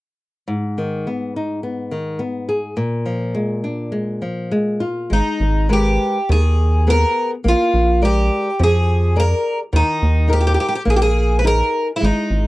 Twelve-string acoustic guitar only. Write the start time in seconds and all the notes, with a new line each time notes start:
5.13 D#4
5.73 G4
6.32 G#4
6.90 A#4
7.48 F4
8.05 G4
8.63 G#4
9.20 A#4
9.76 D#4
10.33 G4
10.41 G4
10.47 G4
10.54 G4
10.60 G4
10.68 G4
10.75 G4
10.90 G#4
10.96 G4
11.02 G#4
11.39 B4
11.47 A#4
11.96 E4
12.04 D#4